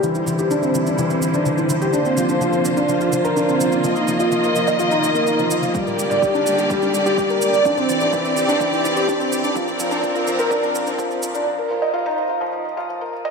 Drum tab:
SH |xxxxxxxxxxxxxxxx|xxxxxxxxxxxxxxxx|xxxxxxxxxxxxxxxx|xxxxxxxxxxxxxxxx|
T2 |----------------|----------------|----------------|-o-o------------|
BD |----------------|----------------|----------------|o---o---o---o---|

SH |xxxxxxxxxxxxxxxx|xxxxxxxxxxxxxxxx|----------------|
T2 |-o-o------------|-o-o------------|----------------|
BD |o---o---o---o---|o---o---o---o---|----------------|